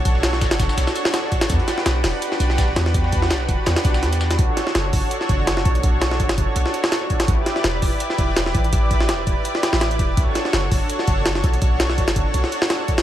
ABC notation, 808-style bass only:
X:1
M:4/4
L:1/16
Q:"Swing 16ths" 1/4=166
K:Bm
V:1 name="808-style bass" clef=bass
B,,,4 F,,,2 F,,, z B,,, z6 z | E,, z3 B,,,2 E,,, z3 B,,,4 E,,2- | E,,4 B,,,2 E,,, z E,, z B,,,2 E,,4 | B,,, z3 F,,,2 F,,, z3 F,,,4 B,,,2- |
B,,,4 F,,,2 F,,, z B,,, z6 z | A,,, z3 E,,,2 E,,, z3 E,,,4 A,,,2- | A,,,4 E,,,2 E,,, z4 A,,,3 E,,,2 | B,,, z3 F,,,2 F,,, z3 F,,,4 B,,,2- |
B,,,4 F,,,2 F,,, z B,,, z6 z |]